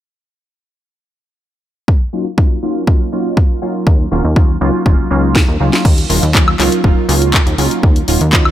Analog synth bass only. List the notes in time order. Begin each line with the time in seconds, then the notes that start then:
3.87 D#2
4.12 D#1
4.25 D#2
4.61 C#2
4.86 D#1
4.99 C#2
5.11 C#2
5.48 D#2
5.60 C#2
5.85 D#2
6.10 D#1
6.23 D#2
6.59 C#2
6.84 D#1
7.09 C#2
7.46 D#2
7.58 C#2
7.83 D#2
8.08 D#1
8.21 D#2